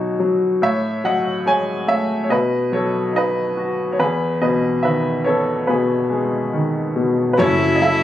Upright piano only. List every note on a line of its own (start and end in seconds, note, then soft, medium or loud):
0.00 0.58 B2 soft
0.00 0.18 F#3 soft
0.00 0.59 D#4 soft
0.00 0.16 F#4 medium
0.00 0.14 C#5 medium
0.20 0.60 F#3 soft
0.62 2.26 A2 medium
0.62 1.02 C#5 medium
0.62 1.01 E5 medium
1.04 2.26 F#3 soft
1.04 1.43 D#5 medium
1.04 1.43 F#5 medium
1.46 2.27 G#3 soft
1.46 1.85 C#5 medium
1.46 1.90 G#5 medium
1.87 2.28 A3 soft
1.87 2.21 C#5 medium
1.87 2.24 E5 medium
2.24 2.30 C#5 medium
2.29 3.94 B2 medium
2.29 2.70 B4 medium
2.29 2.73 D#5 medium
2.72 3.95 F#3 soft
2.72 3.12 A4 medium
2.72 3.12 C#5 medium
3.13 3.95 D#4 soft
3.13 3.75 D#5 medium
3.18 3.75 B4 medium
3.57 3.98 F#4 soft
3.92 3.99 C#5 soft
3.99 7.35 E2 medium
3.99 4.39 G#4 medium
3.99 4.41 B4 medium
4.41 5.67 B2 soft
4.41 4.81 B4 soft
4.41 4.85 D#5 medium
4.83 6.50 D#3 soft
4.83 5.23 B4 soft
4.83 5.22 E5 medium
5.24 6.92 B3 soft
5.24 5.66 A4 medium
5.24 5.69 C#5 medium
5.67 6.94 B2 soft
5.67 6.93 G#4 soft
5.67 6.92 B4 medium
6.10 7.35 G#3 soft
6.53 7.36 D#3 soft
6.96 7.37 B2 soft
7.33 7.40 B4 soft
7.38 7.58 F#3 medium
7.38 7.73 C#4 medium
7.38 7.73 E4 medium
7.38 7.73 A4 medium
7.38 7.76 C#5 medium
7.59 7.80 F#3 medium
7.75 7.82 D#5 medium
7.81 8.00 F#3 medium
7.81 8.03 E4 medium
7.81 8.03 A4 soft
7.81 8.03 E5 medium